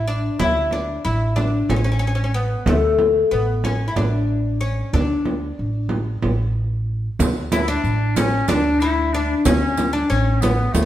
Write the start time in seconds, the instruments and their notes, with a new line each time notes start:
Already playing: upright bass A1
0.08 oud D4
0.39 upright bass D2, oud E4, frame drum
0.71 oud D4, frame drum
1.05 upright bass A1, oud E4
1.36 oud D4, frame drum
1.69 upright bass A1, oud C#4, frame drum
1.76 oud C#4
1.84 oud C#4
1.92 oud C#4
1.99 oud C#4
2.07 oud C#4
2.15 oud C#4
2.24 oud C#4
2.34 oud B3
2.66 upright bass D2, oud A3, frame drum
2.99 frame drum
3.31 upright bass A1, oud B3
3.64 oud C#4, frame drum
3.88 oud E4
3.96 upright bass A1, oud D4, frame drum
4.61 oud C#4
4.93 upright bass D2, oud D4, frame drum
5.25 frame drum
5.59 upright bass A1
5.89 frame drum
6.23 upright bass A1, frame drum
7.19 upright bass D2, riq, frame drum
7.52 oud E4, clarinet E4, riq, frame drum
7.57 clarinet D4 E4
7.68 clarinet D4, oud D4
7.84 upright bass A1, riq
8.16 clarinet C#4, oud C#4, riq, frame drum
8.48 upright bass D2, clarinet D4, oud D4, riq, frame drum
8.80 clarinet E4, oud E4, riq
9.13 clarinet D4, oud D4
9.37 clarinet D4
9.45 upright bass D2, clarinet C#4, oud C#4, riq, frame drum
9.77 riq, frame drum
9.93 clarinet D4, oud D4
10.10 upright bass A1, oud C#4, clarinet C#4, riq
10.41 clarinet B3, oud B3, riq, frame drum
10.73 upright bass D2, clarinet A3, oud A3, riq, frame drum